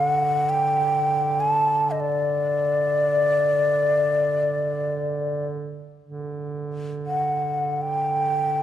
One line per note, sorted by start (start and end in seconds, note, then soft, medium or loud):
0.00 5.85 D3 soft
0.00 0.51 F#5 medium
0.49 1.42 G5 medium
1.40 1.92 A5 medium
1.91 2.02 D#5 medium
2.00 5.47 D5 medium
6.02 8.63 D3 soft
7.06 7.83 F#5 medium
7.82 8.63 G5 medium